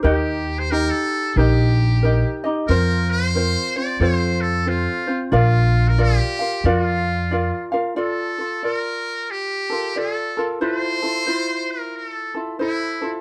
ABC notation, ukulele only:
X:1
M:4/4
L:1/8
Q:"Swing" 1/4=91
K:Bb
V:1 name="Ukulele"
[EGBe]2 [EGe]2 [EGBe]2 [EGBe] [EGe] | [CFBc]2 [CFBc] [CFc] [CFAc]2 [CFAc] [CFc] | [FBdf]2 [FBdf] [FBf] [FBdf]2 [FBdf] [FBf] | [K:Bblyd] [FAd] [FA] [FBd]3 [FAB] [FAd] [FAB] |
[EFAc] [EFA] [EFc]3 [EFA] [EAc] [EFA] |]